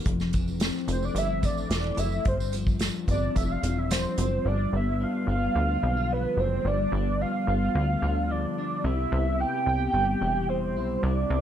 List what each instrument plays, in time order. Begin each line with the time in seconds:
Already playing: clean electric guitar E3 A#3 D4
0.06 analog synth bass F1, clean electric guitar F2, kick, closed hi-hat
0.20 snare, tambourine
0.33 clean electric guitar E3, kick, closed hi-hat, tambourine
0.48 tambourine
0.60 clean electric guitar C4, snare, closed hi-hat, tambourine
0.88 analog synth bass F1, clean electric guitar A3, closed hi-hat, tambourine
0.92 soft synth lead C5
1.03 soft synth lead D5, tambourine
1.15 analog synth bass G1, clean electric guitar C4, soft synth lead E5, closed hi-hat, tambourine
1.43 analog synth bass A1, clean electric guitar A3, soft synth lead D5, kick, closed hi-hat, tambourine
1.58 tambourine
1.70 analog synth bass E1, clean electric guitar E3, snare, closed hi-hat, tambourine
1.97 analog synth bass F#1, clean electric guitar A3, soft synth lead E5, closed hi-hat, tambourine
2.12 tambourine
2.25 analog synth bass G1, clean electric guitar G2, soft synth lead C5, kick, closed hi-hat
2.40 tambourine
2.52 clean electric guitar F3, closed hi-hat, tambourine
2.67 kick, tambourine
2.79 clean electric guitar D4, snare, closed hi-hat, tambourine
3.08 analog synth bass G1, clean electric guitar C4, soft synth lead D5, kick, closed hi-hat, tambourine
3.36 analog synth bass F1, clean electric guitar D4, soft synth lead E5, kick, closed hi-hat, tambourine
3.51 soft synth lead F5
3.63 analog synth bass E1, clean electric guitar C4, closed hi-hat, tambourine
3.78 soft synth lead E5
3.90 clean electric guitar F3, soft synth lead C5, snare, closed hi-hat, tambourine
4.18 analog synth bass F#1, clean electric guitar C4, closed hi-hat, tambourine
4.45 analog synth bass G1, clean electric guitar G2 D4, soft synth lead D5
4.73 analog synth bass G1, clean electric guitar B3, soft synth lead E5
5.00 clean electric guitar D4, soft synth lead F5
5.27 analog synth bass G1, clean electric guitar B3, soft synth lead F5
5.55 analog synth bass D2, clean electric guitar D3
5.83 analog synth bass B1, clean electric guitar C4
5.97 clean electric guitar D4
6.11 clean electric guitar F3, soft synth lead B4
6.37 analog synth bass F#1, clean electric guitar D4, soft synth lead C5
6.65 analog synth bass G1, clean electric guitar G2 D4, soft synth lead D5
6.92 analog synth bass G1, clean electric guitar B3
7.21 clean electric guitar D4, soft synth lead F5
7.47 analog synth bass G1, clean electric guitar B3, soft synth lead F5
7.75 analog synth bass D2, clean electric guitar D3
8.02 analog synth bass D2, clean electric guitar D4
8.31 clean electric guitar F3, soft synth lead D5
8.58 clean electric guitar D4
8.84 analog synth bass C2, clean electric guitar C3 E4, soft synth lead E5
9.12 analog synth bass C2, clean electric guitar B3
9.40 clean electric guitar E4, soft synth lead G5
9.66 analog synth bass C2, soft synth lead G5
9.93 analog synth bass G1, clean electric guitar G3
10.21 analog synth bass E1, clean electric guitar E4
10.49 clean electric guitar G3, soft synth lead C5
10.75 analog synth bass B1, clean electric guitar E4
11.03 analog synth bass C2, clean electric guitar C3 E4, soft synth lead D5
11.30 analog synth bass C2, clean electric guitar B3